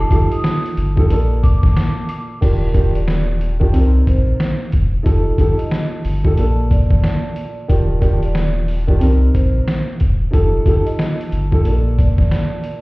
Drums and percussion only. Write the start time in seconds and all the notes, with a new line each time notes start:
0.11 kick, closed hi-hat, high woodblock, shaker
0.32 closed hi-hat
0.44 snare, closed hi-hat, shaker
0.66 closed hi-hat
0.77 closed hi-hat, shaker
0.97 kick
1.10 closed hi-hat, shaker
1.43 kick, closed hi-hat, shaker
1.63 kick, snare
1.76 snare, closed hi-hat, shaker
2.09 closed hi-hat, high woodblock, shaker
2.42 kick, closed hi-hat, crash
2.75 kick, closed hi-hat
2.95 closed hi-hat
3.08 snare, closed hi-hat
3.41 closed hi-hat
3.61 kick
3.74 closed hi-hat
4.07 kick, closed hi-hat
4.40 snare, closed hi-hat
4.72 kick, closed hi-hat
5.06 kick, closed hi-hat
5.38 kick, closed hi-hat
5.59 closed hi-hat
5.71 snare, closed hi-hat
6.05 open hi-hat
6.25 kick
6.38 closed hi-hat
6.71 kick, closed hi-hat
6.91 kick
7.04 snare, closed hi-hat
7.36 closed hi-hat
7.70 kick, closed hi-hat
8.02 kick, closed hi-hat
8.23 closed hi-hat
8.35 snare, closed hi-hat
8.68 open hi-hat
8.88 kick
9.01 closed hi-hat
9.35 kick, closed hi-hat
9.68 snare, closed hi-hat
10.00 kick, closed hi-hat
10.34 kick, closed hi-hat
10.66 kick, closed hi-hat
10.87 closed hi-hat
10.99 snare, closed hi-hat
11.21 closed hi-hat
11.32 closed hi-hat
11.52 kick
11.65 closed hi-hat
11.99 kick, closed hi-hat
12.18 kick, snare
12.31 snare, closed hi-hat
12.64 closed hi-hat